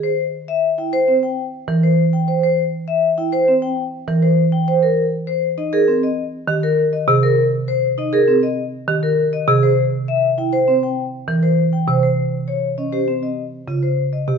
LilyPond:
<<
  \new Staff \with { instrumentName = "Vibraphone" } { \time 4/4 \key c \phrygian \tempo 4 = 100 c''16 r8 e''16 r16 g''16 c''16 r16 g''16 r8. c''16 r16 g''16 r16 | c''16 r8 e''16 r16 g''16 c''16 r16 g''16 r8. c''16 r16 g''16 r16 | bes'16 r8 c''16 r16 ees''16 bes'16 r16 ees''16 r8. bes'16 r16 ees''16 r16 | bes'16 r8 c''16 r16 ees''16 bes'16 r16 ees''16 r8. bes'16 r16 ees''16 r16 |
c''16 r8 e''16 r16 g''16 c''16 r16 g''16 r8. c''16 r16 g''16 r16 | c''16 r8 des''16 r16 ees''16 c''16 r16 ees''16 r8. c''16 r16 ees''16 r16 | }
  \new Staff \with { instrumentName = "Vibraphone" } { \time 4/4 \key c \phrygian r4 r16 e'16 c''16 c'16 r8. bes'16 r8. c''16 | r4 r16 e'16 c''16 c'16 r8. bes'16 r8. c''16 | r4 r16 ees'16 aes'16 c'16 r8. g'16 r8. aes'16 | r4 r16 ees'16 aes'16 c'16 r8. g'16 r8. aes'16 |
r4 r16 e'16 c''16 c'16 r8. bes'16 r8. c''16 | r4 r16 des'16 g'16 c'16 r8. f'16 r8. g'16 | }
  \new Staff \with { instrumentName = "Marimba" } { \clef bass \time 4/4 \key c \phrygian r2 r8. e16 r4 | r2 r8. e16 r4 | r2 r8. ees16 r8. c16 | r2 r8. ees16 r8. c16 |
r2 r8. e16 r8. c16 | r2 r8. des16 r8. c16 | }
>>